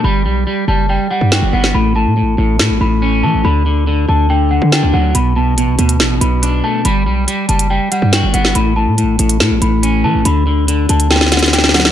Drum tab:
HH |------------------------------------------------------------------------------------------------|------------------------------------------------------------------------------------------------|------------------------------------------------------------------------------------------------|x-----------------------x-----------x-----x-----------------x-----------x-----------------------|
SD |------------------------------------------------------------------------o-----------------o-----|------------------------------------------------o-----------------------------------------------|------------------------------------------------------------------------o-----------------------|------------------------------------------------o-----------------------------------------------|

HH |x-----------------------x-----------x-----x-----------------x-----------x-----------x-----------|x-----------------------x-----------x-----x-----------------x-----------x-----------------------|x-----------------------x-----------x-----x-----------------x---x---x---x-----------o-----------|
SD |------------------------------------------------------------------------o-----------------o-----|------------------------------------------------o-----------------------------------------------|------------------------------------------------o--o--o--o--o--o--o--o--o--o--o--o--o--o--o-----|